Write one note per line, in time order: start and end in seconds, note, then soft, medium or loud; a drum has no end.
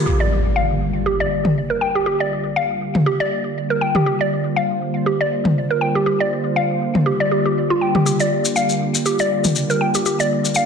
0.06 10.66 D3 medium
0.06 10.66 G3 medium
0.06 10.66 A#3 medium
0.06 10.66 F4 medium
0.06 0.19 G4 medium
0.06 4.05 G4 medium
0.06 impact medium
0.20 0.30 D5 medium
0.56 0.69 F5 medium
1.06 1.19 G4 medium
1.20 1.30 D5 medium
1.45 mid tom medium
1.70 1.80 A#4 medium
1.81 1.94 G5 medium
1.95 2.05 G4 medium
2.06 2.19 G4 medium
2.20 2.30 D5 loud
2.56 2.69 F5 loud
2.95 mid tom medium
3.06 3.19 G4 medium
3.20 3.30 D5 medium
3.70 3.80 A#4 medium
3.81 3.94 G5 medium
3.95 4.05 G4 medium
3.95 mid tom medium
4.06 4.19 G4 medium
4.06 8.05 C5 medium
4.21 4.30 D5 loud
4.56 4.69 F5 medium
5.06 5.19 G4 medium
5.21 5.30 D5 medium
5.45 mid tom medium
5.70 5.80 A#4 medium
5.81 5.94 G5 medium
5.95 6.05 G4 medium
6.06 6.19 G4 medium
6.20 6.30 D5 loud
6.56 6.69 F5 loud
6.95 mid tom medium
7.06 7.19 G4 medium
7.20 7.30 D5 medium
7.31 7.39 G4 medium
7.46 7.55 G4 medium
7.70 7.80 F4 medium
7.81 7.95 G5 medium
7.95 8.05 G4 medium
7.95 mid tom medium
8.06 10.66 G4 medium
8.06 8.19 G4 medium
8.06 shekere medium
8.20 8.30 D5 medium
8.20 shekere soft
8.45 shekere medium
8.56 8.69 F5 loud
8.56 shekere medium
8.69 shekere soft
8.95 shekere medium
9.05 9.19 G4 medium
9.05 shekere medium
9.19 9.30 D5 loud
9.19 shekere soft
9.44 mid tom medium
9.44 shekere medium
9.55 shekere medium
9.70 9.80 A#4 medium
9.70 shekere soft
9.81 9.94 G5 medium
9.95 10.05 G4 medium
9.95 shekere medium
10.06 10.19 G4 medium
10.06 shekere medium
10.20 10.30 D5 medium
10.20 shekere soft
10.45 shekere medium
10.55 10.66 F5 medium
10.55 shekere medium